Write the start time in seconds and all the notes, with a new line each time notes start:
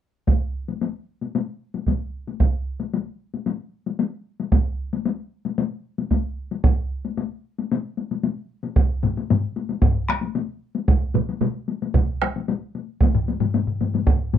0.27 taiko, taiko high
0.68 taiko high
0.81 taiko high
1.22 taiko high
1.35 taiko high
1.74 taiko high
1.86 taiko, taiko high
2.28 taiko high
2.40 taiko, taiko high
2.80 taiko high
2.94 taiko high
3.34 taiko high
3.46 taiko high
3.86 taiko high
3.99 taiko high
4.40 taiko high
4.52 taiko, taiko high
4.93 taiko high
5.05 taiko high
5.46 taiko high
5.58 taiko high
5.98 taiko high
6.11 taiko, taiko high
6.51 taiko high
6.64 taiko, taiko high
7.05 taiko high
7.17 taiko high
7.58 taiko high
7.72 taiko high
7.97 taiko high
8.11 taiko high
8.23 taiko high
8.64 taiko high
8.76 taiko, taiko high
9.04 taiko low-mid, taiko high
9.17 taiko high
9.30 taiko low-mid, taiko high
9.56 taiko high
9.69 taiko high
9.82 taiko, taiko low-mid, taiko high
10.09 taiko rim, taiko high
10.21 taiko high
10.35 taiko high
10.75 taiko high
10.88 taiko, taiko high
11.14 taiko mid, taiko high
11.29 taiko high
11.41 taiko mid, taiko high
11.68 taiko high
11.82 taiko high
11.94 taiko, taiko mid, taiko high
12.22 taiko rim, taiko high
12.36 taiko high
12.48 taiko high
12.75 taiko high
13.01 taiko, taiko high
13.15 taiko low-mid
13.28 taiko high
13.40 taiko low-mid, taiko high
13.54 taiko low-mid, taiko high
13.67 taiko low-mid
13.81 taiko low-mid, taiko high
13.94 taiko low-mid, taiko high
14.07 taiko, taiko low-mid, taiko high
14.33 taiko low-mid, taiko high